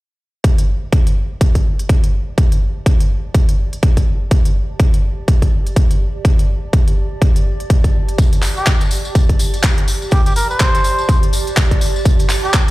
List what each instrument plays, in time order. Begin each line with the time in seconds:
0.44 ambient pad G4, kick, closed hi-hat
0.58 closed hi-hat
0.67 ambient pad A5
0.81 ambient pad D5
0.93 kick, closed hi-hat
1.07 closed hi-hat
1.41 kick, closed hi-hat
1.55 kick, closed hi-hat
1.79 closed hi-hat
1.89 kick, closed hi-hat
2.04 closed hi-hat
2.38 kick, closed hi-hat
2.52 closed hi-hat
2.86 kick, closed hi-hat
3.00 closed hi-hat
3.34 kick, closed hi-hat
3.49 closed hi-hat
3.73 closed hi-hat
3.83 kick, closed hi-hat
3.97 kick, closed hi-hat
4.31 kick, closed hi-hat
4.45 closed hi-hat
4.80 kick, closed hi-hat
4.94 closed hi-hat
5.28 kick, closed hi-hat
5.42 kick, closed hi-hat
5.67 closed hi-hat
5.76 kick, closed hi-hat
5.91 closed hi-hat
6.25 kick, closed hi-hat
6.39 closed hi-hat
6.73 kick, closed hi-hat
6.88 closed hi-hat
7.22 kick, closed hi-hat
7.36 closed hi-hat
7.60 closed hi-hat
7.70 kick, closed hi-hat
7.84 kick, closed hi-hat
8.09 closed hi-hat
8.18 kick, closed hi-hat, tambourine
8.33 closed hi-hat, tambourine
8.42 clap, open hi-hat, tambourine
8.57 muted trumpet G4, tambourine
8.66 kick, clap, closed hi-hat, tambourine
8.81 closed hi-hat, tambourine
8.91 open hi-hat, tambourine
9.05 tambourine
9.15 kick, closed hi-hat, tambourine
9.29 kick, closed hi-hat
9.39 open hi-hat, tambourine
9.54 closed hi-hat, tambourine
9.63 kick, clap, closed hi-hat, tambourine
9.78 closed hi-hat
9.88 open hi-hat, tambourine
10.02 tambourine
10.11 muted trumpet G4, kick, closed hi-hat, tambourine
10.26 muted trumpet G4, closed hi-hat, tambourine
10.36 muted trumpet A#4, open hi-hat, tambourine
10.50 muted trumpet C5, tambourine
10.60 kick, clap, closed hi-hat, tambourine
10.75 closed hi-hat, tambourine
10.84 open hi-hat, tambourine
10.98 tambourine
11.09 kick, closed hi-hat, tambourine
11.23 closed hi-hat
11.33 open hi-hat, tambourine
11.47 closed hi-hat, tambourine
11.57 kick, clap, closed hi-hat, tambourine
11.71 kick, closed hi-hat
11.81 open hi-hat, tambourine
11.96 tambourine
12.05 kick, closed hi-hat, tambourine
12.19 closed hi-hat, tambourine
12.29 clap, open hi-hat, tambourine
12.44 muted trumpet G4, tambourine
12.54 kick, clap, closed hi-hat, tambourine